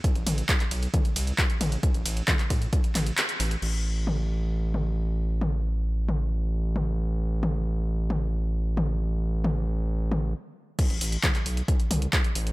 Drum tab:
CC |----------------|----------------|x---------------|----------------|
RD |--x---x---x---x-|--x---x---x---x-|----------------|----------------|
HH |xxoxxxoxxxoxxxox|xxoxxxoxxxoxxxox|----------------|----------------|
CP |----xx------x---|----xx----x-x---|----------------|----------------|
T2 |--o-----o-----o-|----o-----o-----|----o-----o-----|o-----o-----o---|
BD |o---o---o---o---|o---o-o-o-------|----------------|----------------|

CC |----------------|----------------|x---------------|
RD |----------------|----------------|----------------|
HH |----------------|----------------|xxoxxxoxxxoxxxox|
CP |----------------|----------------|----xx------x---|
T2 |--o-----o-----o-|----o-----o-----|----o-----o-----|
BD |----------------|----------------|o---o---o---o---|